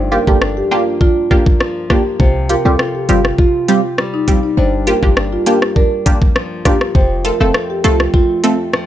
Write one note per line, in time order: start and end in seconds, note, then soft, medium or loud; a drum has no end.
0.00 0.19 G1 loud
0.00 2.20 G2 medium
0.00 1.60 F3 medium
0.00 0.40 D4 medium
0.12 0.70 A#3 medium
0.12 0.18 F4 medium
0.12 0.18 G4 medium
0.12 0.26 A#4 medium
0.27 0.63 G1 medium
0.27 0.39 A#3 medium
0.27 0.39 D4 medium
0.27 0.39 F4 medium
0.27 0.39 G4 medium
0.27 0.40 A4 medium
0.27 kick medium
0.42 1.00 D4 medium
0.42 cross-stick loud
0.57 0.70 G4 medium
0.71 0.84 A#3 medium
0.71 1.29 A#3 medium
0.71 0.84 D4 medium
0.71 0.85 F4 medium
0.71 0.84 F4 medium
0.71 0.84 G4 medium
1.01 2.20 D4 medium
1.01 1.44 F4 medium
1.01 kick medium
1.31 1.43 A#3 medium
1.31 1.89 A#3 medium
1.31 1.43 D4 medium
1.31 1.43 F4 medium
1.31 1.43 G4 medium
1.31 kick medium
1.46 kick medium
1.60 3.98 F3 medium
1.60 cross-stick medium
1.90 2.03 A#3 medium
1.90 2.26 A#3 medium
1.90 2.03 D4 medium
1.90 2.03 F4 medium
1.90 2.03 G4 medium
1.90 2.04 G4 medium
1.90 kick medium
1.90 cross-stick loud
2.20 2.56 C2 loud
2.20 4.57 C3 medium
2.20 2.79 F4 medium
2.20 2.34 C5 medium
2.20 kick loud
2.49 3.08 C4 medium
2.49 2.56 F4 medium
2.49 2.56 G4 medium
2.49 2.64 A#4 medium
2.49 closed hi-hat medium
2.65 2.76 C2 loud
2.65 2.76 G3 medium
2.65 2.76 C4 medium
2.65 2.76 F4 medium
2.65 2.77 G4 medium
2.65 2.78 A4 medium
2.79 3.38 F4 medium
2.79 cross-stick loud
2.95 3.07 G4 medium
3.09 3.33 G1 medium
3.09 3.22 G3 medium
3.09 3.67 C4 medium
3.09 3.22 C4 medium
3.09 3.23 F4 medium
3.09 3.22 F4 medium
3.09 3.22 G4 medium
3.09 closed hi-hat medium
3.25 cross-stick medium
3.38 3.81 F4 loud
3.38 4.58 F4 medium
3.38 kick medium
3.68 3.81 G3 medium
3.68 4.27 C4 medium
3.68 3.81 C4 medium
3.68 3.81 F4 medium
3.68 3.81 G4 medium
3.68 closed hi-hat medium
3.98 6.35 G3 medium
3.98 cross-stick medium
4.14 4.26 D#4 medium
4.28 4.40 G3 medium
4.28 4.64 C4 medium
4.28 4.40 C4 medium
4.28 4.40 F4 medium
4.28 4.40 G4 medium
4.28 kick medium
4.28 closed hi-hat medium
4.43 4.56 D#4 medium
4.57 4.94 G1 loud
4.57 6.95 G2 medium
4.57 5.16 D4 medium
4.57 4.71 C5 medium
4.87 5.45 A#3 medium
4.87 4.93 F4 medium
4.87 4.93 G4 medium
4.87 5.01 A#4 medium
4.87 closed hi-hat medium
5.03 5.38 G1 medium
5.03 5.14 A#3 medium
5.03 5.14 D4 medium
5.03 5.14 F4 medium
5.03 5.15 G4 medium
5.03 5.14 G4 medium
5.03 kick medium
5.17 5.75 D4 medium
5.17 cross-stick loud
5.33 5.45 F4 medium
5.46 5.59 A#3 medium
5.46 6.05 A#3 medium
5.46 5.59 D4 medium
5.46 5.59 F4 medium
5.46 5.61 G4 medium
5.46 5.59 G4 medium
5.46 closed hi-hat medium
5.62 cross-stick medium
5.76 6.95 D4 medium
5.76 6.19 A#4 medium
5.76 kick medium
6.06 6.18 A#3 medium
6.06 6.64 A#3 medium
6.06 6.19 D4 medium
6.06 6.19 F4 medium
6.06 6.19 G4 medium
6.06 kick medium
6.06 closed hi-hat medium
6.22 kick loud
6.36 8.73 F3 medium
6.36 cross-stick medium
6.65 6.78 A#3 medium
6.65 7.01 A#3 medium
6.65 6.78 D4 medium
6.65 6.78 F4 medium
6.65 6.79 G4 medium
6.65 6.78 G4 medium
6.65 kick medium
6.65 cross-stick medium
6.65 closed hi-hat medium
6.81 cross-stick medium
6.95 7.32 F1 loud
6.95 8.86 F2 medium
6.95 7.53 C4 medium
6.95 7.09 C5 medium
6.95 kick loud
7.25 7.83 A3 medium
7.25 7.31 F4 medium
7.25 7.31 A4 medium
7.25 7.39 A#4 medium
7.25 closed hi-hat medium
7.40 7.52 F1 medium
7.40 7.52 A3 medium
7.40 7.52 C4 medium
7.40 7.52 F4 medium
7.40 7.53 A4 medium
7.40 7.52 A4 medium
7.54 8.12 C4 medium
7.54 cross-stick loud
7.70 7.83 G4 medium
7.84 8.08 C2 medium
7.84 8.42 A3 medium
7.84 7.97 A3 medium
7.84 7.97 C4 medium
7.84 7.98 F4 medium
7.84 7.97 F4 medium
7.84 7.97 A4 medium
7.84 closed hi-hat medium
8.00 cross-stick medium
8.14 8.86 C4 medium
8.14 8.56 F4 medium
8.14 kick medium
8.43 8.86 A3 medium
8.43 8.56 A3 medium
8.43 8.56 C4 medium
8.43 8.56 F4 medium
8.43 8.56 A4 medium
8.43 closed hi-hat medium
8.73 8.86 F3 medium
8.73 cross-stick medium